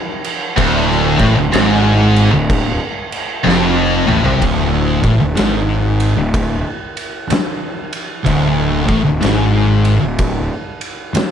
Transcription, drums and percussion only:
0, 0, Header, 1, 2, 480
1, 0, Start_track
1, 0, Tempo, 961538
1, 285, Time_signature, 4, 2, 24, 8
1, 5646, End_track
2, 0, Start_track
2, 0, Title_t, "Drums"
2, 122, Note_on_c, 9, 49, 65
2, 172, Note_off_c, 9, 49, 0
2, 289, Note_on_c, 9, 36, 106
2, 289, Note_on_c, 9, 49, 91
2, 338, Note_off_c, 9, 36, 0
2, 339, Note_off_c, 9, 49, 0
2, 453, Note_on_c, 9, 38, 33
2, 503, Note_off_c, 9, 38, 0
2, 596, Note_on_c, 9, 49, 58
2, 597, Note_on_c, 9, 36, 98
2, 645, Note_off_c, 9, 49, 0
2, 647, Note_off_c, 9, 36, 0
2, 765, Note_on_c, 9, 49, 81
2, 776, Note_on_c, 9, 38, 121
2, 815, Note_off_c, 9, 49, 0
2, 826, Note_off_c, 9, 38, 0
2, 1080, Note_on_c, 9, 49, 60
2, 1130, Note_off_c, 9, 49, 0
2, 1247, Note_on_c, 9, 36, 115
2, 1248, Note_on_c, 9, 49, 84
2, 1297, Note_off_c, 9, 36, 0
2, 1297, Note_off_c, 9, 49, 0
2, 1559, Note_on_c, 9, 49, 54
2, 1609, Note_off_c, 9, 49, 0
2, 1740, Note_on_c, 9, 38, 64
2, 1790, Note_off_c, 9, 38, 0
2, 2040, Note_on_c, 9, 45, 95
2, 2090, Note_off_c, 9, 45, 0
2, 2123, Note_on_c, 9, 43, 88
2, 2173, Note_off_c, 9, 43, 0
2, 2206, Note_on_c, 9, 36, 106
2, 2207, Note_on_c, 9, 51, 91
2, 2255, Note_off_c, 9, 36, 0
2, 2256, Note_off_c, 9, 51, 0
2, 2514, Note_on_c, 9, 36, 100
2, 2514, Note_on_c, 9, 51, 63
2, 2564, Note_off_c, 9, 36, 0
2, 2564, Note_off_c, 9, 51, 0
2, 2681, Note_on_c, 9, 51, 101
2, 2692, Note_on_c, 9, 38, 110
2, 2731, Note_off_c, 9, 51, 0
2, 2742, Note_off_c, 9, 38, 0
2, 2996, Note_on_c, 9, 51, 70
2, 3046, Note_off_c, 9, 51, 0
2, 3165, Note_on_c, 9, 36, 115
2, 3166, Note_on_c, 9, 51, 106
2, 3215, Note_off_c, 9, 36, 0
2, 3216, Note_off_c, 9, 51, 0
2, 3479, Note_on_c, 9, 51, 71
2, 3529, Note_off_c, 9, 51, 0
2, 3646, Note_on_c, 9, 51, 97
2, 3657, Note_on_c, 9, 38, 107
2, 3696, Note_off_c, 9, 51, 0
2, 3707, Note_off_c, 9, 38, 0
2, 3957, Note_on_c, 9, 51, 71
2, 4007, Note_off_c, 9, 51, 0
2, 4125, Note_on_c, 9, 36, 105
2, 4126, Note_on_c, 9, 51, 96
2, 4175, Note_off_c, 9, 36, 0
2, 4176, Note_off_c, 9, 51, 0
2, 4435, Note_on_c, 9, 51, 68
2, 4436, Note_on_c, 9, 36, 101
2, 4485, Note_off_c, 9, 51, 0
2, 4486, Note_off_c, 9, 36, 0
2, 4605, Note_on_c, 9, 51, 87
2, 4616, Note_on_c, 9, 38, 97
2, 4655, Note_off_c, 9, 51, 0
2, 4666, Note_off_c, 9, 38, 0
2, 4917, Note_on_c, 9, 51, 64
2, 4966, Note_off_c, 9, 51, 0
2, 5085, Note_on_c, 9, 51, 90
2, 5087, Note_on_c, 9, 36, 104
2, 5135, Note_off_c, 9, 51, 0
2, 5137, Note_off_c, 9, 36, 0
2, 5397, Note_on_c, 9, 51, 65
2, 5447, Note_off_c, 9, 51, 0
2, 5565, Note_on_c, 9, 51, 84
2, 5576, Note_on_c, 9, 38, 113
2, 5615, Note_off_c, 9, 51, 0
2, 5626, Note_off_c, 9, 38, 0
2, 5646, End_track
0, 0, End_of_file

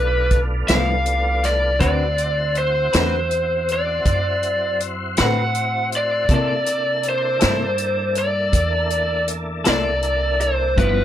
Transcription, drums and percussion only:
0, 0, Header, 1, 2, 480
1, 0, Start_track
1, 0, Tempo, 747943
1, 1162, Time_signature, 12, 3, 24, 8
1, 7088, End_track
2, 0, Start_track
2, 0, Title_t, "Drums"
2, 197, Note_on_c, 9, 42, 52
2, 199, Note_on_c, 9, 36, 62
2, 261, Note_off_c, 9, 42, 0
2, 263, Note_off_c, 9, 36, 0
2, 437, Note_on_c, 9, 42, 75
2, 446, Note_on_c, 9, 38, 100
2, 501, Note_off_c, 9, 42, 0
2, 510, Note_off_c, 9, 38, 0
2, 678, Note_on_c, 9, 42, 58
2, 742, Note_off_c, 9, 42, 0
2, 922, Note_on_c, 9, 42, 52
2, 930, Note_on_c, 9, 38, 28
2, 986, Note_off_c, 9, 42, 0
2, 994, Note_off_c, 9, 38, 0
2, 1157, Note_on_c, 9, 42, 68
2, 1160, Note_on_c, 9, 36, 87
2, 1221, Note_off_c, 9, 42, 0
2, 1224, Note_off_c, 9, 36, 0
2, 1399, Note_on_c, 9, 42, 57
2, 1464, Note_off_c, 9, 42, 0
2, 1638, Note_on_c, 9, 42, 51
2, 1702, Note_off_c, 9, 42, 0
2, 1882, Note_on_c, 9, 42, 70
2, 1890, Note_on_c, 9, 38, 103
2, 1946, Note_off_c, 9, 42, 0
2, 1954, Note_off_c, 9, 38, 0
2, 2123, Note_on_c, 9, 42, 51
2, 2187, Note_off_c, 9, 42, 0
2, 2365, Note_on_c, 9, 42, 55
2, 2430, Note_off_c, 9, 42, 0
2, 2602, Note_on_c, 9, 42, 68
2, 2603, Note_on_c, 9, 36, 74
2, 2666, Note_off_c, 9, 42, 0
2, 2667, Note_off_c, 9, 36, 0
2, 2841, Note_on_c, 9, 42, 49
2, 2906, Note_off_c, 9, 42, 0
2, 3083, Note_on_c, 9, 42, 53
2, 3147, Note_off_c, 9, 42, 0
2, 3316, Note_on_c, 9, 42, 67
2, 3324, Note_on_c, 9, 38, 87
2, 3380, Note_off_c, 9, 42, 0
2, 3389, Note_off_c, 9, 38, 0
2, 3559, Note_on_c, 9, 42, 54
2, 3624, Note_off_c, 9, 42, 0
2, 3800, Note_on_c, 9, 42, 50
2, 3865, Note_off_c, 9, 42, 0
2, 4034, Note_on_c, 9, 42, 65
2, 4036, Note_on_c, 9, 36, 92
2, 4099, Note_off_c, 9, 42, 0
2, 4101, Note_off_c, 9, 36, 0
2, 4276, Note_on_c, 9, 42, 59
2, 4340, Note_off_c, 9, 42, 0
2, 4513, Note_on_c, 9, 42, 55
2, 4577, Note_off_c, 9, 42, 0
2, 4753, Note_on_c, 9, 42, 77
2, 4761, Note_on_c, 9, 38, 94
2, 4817, Note_off_c, 9, 42, 0
2, 4825, Note_off_c, 9, 38, 0
2, 4992, Note_on_c, 9, 42, 54
2, 5057, Note_off_c, 9, 42, 0
2, 5232, Note_on_c, 9, 42, 56
2, 5296, Note_off_c, 9, 42, 0
2, 5474, Note_on_c, 9, 42, 79
2, 5475, Note_on_c, 9, 36, 65
2, 5538, Note_off_c, 9, 42, 0
2, 5539, Note_off_c, 9, 36, 0
2, 5714, Note_on_c, 9, 42, 56
2, 5778, Note_off_c, 9, 42, 0
2, 5954, Note_on_c, 9, 42, 58
2, 6018, Note_off_c, 9, 42, 0
2, 6193, Note_on_c, 9, 42, 83
2, 6202, Note_on_c, 9, 38, 109
2, 6257, Note_off_c, 9, 42, 0
2, 6266, Note_off_c, 9, 38, 0
2, 6434, Note_on_c, 9, 42, 52
2, 6498, Note_off_c, 9, 42, 0
2, 6677, Note_on_c, 9, 42, 47
2, 6741, Note_off_c, 9, 42, 0
2, 6916, Note_on_c, 9, 36, 88
2, 6916, Note_on_c, 9, 42, 59
2, 6980, Note_off_c, 9, 36, 0
2, 6981, Note_off_c, 9, 42, 0
2, 7088, End_track
0, 0, End_of_file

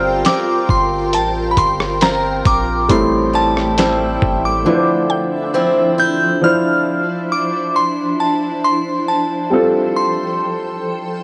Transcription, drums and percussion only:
0, 0, Header, 1, 2, 480
1, 0, Start_track
1, 0, Key_signature, -1, "minor"
1, 0, Tempo, 882353
1, 1574, Time_signature, 4, 2, 24, 8
1, 6111, End_track
2, 0, Start_track
2, 0, Title_t, "Drums"
2, 135, Note_on_c, 9, 42, 66
2, 142, Note_on_c, 9, 38, 114
2, 189, Note_off_c, 9, 42, 0
2, 197, Note_off_c, 9, 38, 0
2, 376, Note_on_c, 9, 36, 95
2, 430, Note_off_c, 9, 36, 0
2, 615, Note_on_c, 9, 42, 65
2, 670, Note_off_c, 9, 42, 0
2, 854, Note_on_c, 9, 42, 66
2, 855, Note_on_c, 9, 36, 81
2, 909, Note_off_c, 9, 36, 0
2, 909, Note_off_c, 9, 42, 0
2, 980, Note_on_c, 9, 37, 96
2, 1035, Note_off_c, 9, 37, 0
2, 1094, Note_on_c, 9, 42, 63
2, 1102, Note_on_c, 9, 38, 115
2, 1149, Note_off_c, 9, 42, 0
2, 1156, Note_off_c, 9, 38, 0
2, 1335, Note_on_c, 9, 36, 101
2, 1335, Note_on_c, 9, 42, 67
2, 1389, Note_off_c, 9, 36, 0
2, 1389, Note_off_c, 9, 42, 0
2, 1574, Note_on_c, 9, 36, 105
2, 1575, Note_on_c, 9, 42, 74
2, 1629, Note_off_c, 9, 36, 0
2, 1629, Note_off_c, 9, 42, 0
2, 1943, Note_on_c, 9, 37, 68
2, 1997, Note_off_c, 9, 37, 0
2, 2055, Note_on_c, 9, 42, 65
2, 2062, Note_on_c, 9, 38, 113
2, 2110, Note_off_c, 9, 42, 0
2, 2117, Note_off_c, 9, 38, 0
2, 2296, Note_on_c, 9, 36, 88
2, 2351, Note_off_c, 9, 36, 0
2, 6111, End_track
0, 0, End_of_file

